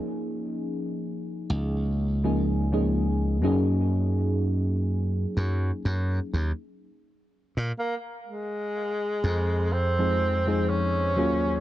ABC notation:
X:1
M:4/4
L:1/16
Q:"Swing 16ths" 1/4=62
K:Fphr
V:1 name="FM electric piano"
[F,B,DEA]8- [F,B,DEA] [F,B,DEA]2 [F,B,DEA]3 [G,B,DEA]2- | [G,B,DEA]8- [G,B,DEA]3 z4 z | z8 z [F,A,CEA]2 [F,A,EAc]3 [G,B,DFA]2 |]
V:2 name="Tenor saxophone"
z16 | z16 | B,2 A,6 C4 D4 |]
V:3 name="Slap bass" clef=bass
z6 D,,8 G,,2- | G,,4- G,, z G,, z G,, z E,, z4 B,, | z6 F,,8 E,,2 |]